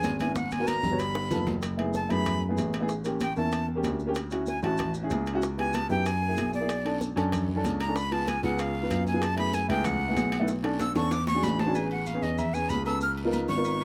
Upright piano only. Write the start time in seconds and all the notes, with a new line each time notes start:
Already playing: B3 C#4 G#4
0.19 B3 C#4 E4
0.59 B3 F#4 A#4
0.90 B3 F#4 C#5
1.30 B3 F4 A4
1.77 A3 B3 E4 G#4
2.09 A3 B3 E4 G#4
2.49 A3 B3 E4 G#4
2.80 A3 B3 E4 G#4
3.04 A#3 C#4 G4
3.36 A#3 C#4 E4
3.75 A#3 C#4 G4
4.06 A#3 C#4 G4
4.31 C#4 E4 F#4
4.63 C#4 E4 F#4
5.02 C#4 E4 G#4
5.33 C#4 E4 F#4
5.57 B3 E4 G4
5.89 B3 E4 G4
6.28 A#3 E4 G#4
6.60 A#3 E4 G#4
6.84 C#4 D4 A4
7.16 C#4 D4 A4
7.55 C#4 D4 A4
7.87 C#4 D4 A4
8.11 B3 F4 G#4
8.43 B3 F4 G#4
8.82 B3 F4 B4
9.13 B3 F4 G#4
9.36 A3 B3 E4 G#4
9.69 A3 B3 E4 G#4
10.08 A3 B3 E4 G#4
10.40 A3 B3 E4 B4
10.63 C#4 D4 A4
10.95 C#4 D4 A4
11.34 C#4 D4 F#4 G#4
11.66 C#4 D4 F#4 G#4
11.73 B3 C#4 G#4
12.14 B3 C#4 G#4
12.53 B3 C#4 G#4
12.85 B3 C#4 A4
13.24 B3 D#4 F4 A#4
13.56 B3 D#4 F4 A#4